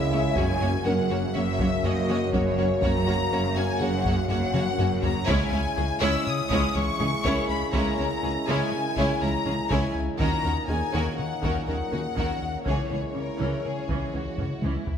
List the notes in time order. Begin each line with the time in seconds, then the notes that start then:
Already playing: C#2 C#3 G#3 C#4 E4 G#4 A#4 E5
0.12 C#2 G#3 C#4 E4 C#5
0.36 F#1 F#2 C#3 F#3 A#3 C#4 F#4 C#5 G#5, taiko
0.61 F#2 A#3 C#4 F#4 C#5
0.84 F#1 F#2 A#3 C#4 F#4 A#4 C#5 F#5
1.10 F#2 F#3 A#3 C#4 F#4 C#5
1.34 F#1 F#2 F#3 A#3 C#4 F#4 C#5 E5
1.59 F#2 F#3 A#3 C#4 F#4 C#5, taiko
1.84 F#1 F#2 A#3 C#4 F#4 C#5 D#5, taiko low-mid
2.09 F#3 A#3 C#4 F#4 C#5
2.33 F#1 F#2 F#3 A#3 C#4 F#4 C#5, taiko
2.58 F#2 A#3 C#4 F#4 C#5
2.82 F#1 F#2 F#3 A#3 C#4 F#4 C#5 A#5, taiko
3.07 F#2 A#3 C#4 F#4 C#5
3.31 F#1 F#2 A#3 C#4 F#4 C#5
3.56 F#2 F#3 A#3 C#4 F#4 C#5 G#5
3.80 F#1 F#2 F#3 A#3 C#4 F#4 G#4 C#5 F#5
4.05 F#2 F#3 A#3 C#4 F#4 C#5, taiko
4.29 F#1 F#2 A#3 C#4 F#4 C#5 F#5
4.53 F#3 A#3 C#4 F#4 C#5, taiko mid
4.78 F#1 F#2 F#3 A#3 C#4 F#4 C#5, taiko low-mid
5.02 F#2 A#3 C#4 F#4 C#5 A#5, taiko low
5.27 C#2 C#3 G#3 C#4 E4 C#5 G#5, taiko
5.52 C#2 G#3 C#4 E4 C#5
5.77 C#2 G#3 C#4 G#4
6.01 C#2 C#3 G#3 C#4 E4 C#5 E6
6.27 C#3 D#6
6.50 C#2 C#3 G#3 C#4 E4 C#5, taiko
6.75 C#2 E3 G#3 C#4 E4 C#5 C#6
7.00 C#2 C#3 G#3 C#4 G#4
7.24 C#2 C#3 G#3 C#4 E4 A#4 C#5, taiko
7.49 C#2 B5
7.73 C#2 C#3 G#3 C#4 E4 C#5 A#5, taiko
7.98 C#2 G#3 C#4 E4 C#5
8.23 C#2 G#3 C#4 G#4
8.48 C#2 C#3 G#3 C#4 E4 C#5 G#5
8.72 C#3
8.96 C#2 C#3 G#3 C#4 E4 C#5, taiko
9.22 C#2 E3 G#3 C#4 E4 C#5 A#5
9.46 C#2 C#3 G#3 C#4 G#4
9.70 C#2 C#3 G#3 C#4 E4 C#5 G#5, taiko
9.95 C#2
10.19 D#2 A#2 D#3 A#3 C#4 D#4 F#4 A#4 A#5, taiko
10.44 D#2 D#3 C#4 F#4 A#4
10.68 D#2 D#3 C#4 D#4 F#4 G#4 G#5
10.93 D#2 D#3 C#4 F#4 A#4
11.18 D#3 F#5
11.43 D#2 D#3 C#4 F#4 A#4, taiko
11.67 D#2 D#3 F#3 C#4 F#4 A#4 F#5
11.92 D#2 D#3 A#3 C#4 D#4 F#4 A#4
12.16 D#2 D#3 C#4 F#4 A#4, taiko
12.42 D#2
12.65 C#2 C#3 E3 G#3 C#4 E4 G#4 C#5, taiko
12.90 C#2 E3 C#4 G#4 C#5
13.14 C#2 E3 C#4 A#4
13.39 C#2 C#3 E3 C#4
13.65 C#3 G#4
13.89 C#2 C#3 E3 C#4, taiko
14.14 C#2 E3 C#4 F#4
14.38 C#2 C#3 E3 G#3 C#4, taiko low-mid
14.62 C#2 C#3 E3 C#4 E4, taiko high
14.87 C#2, taiko low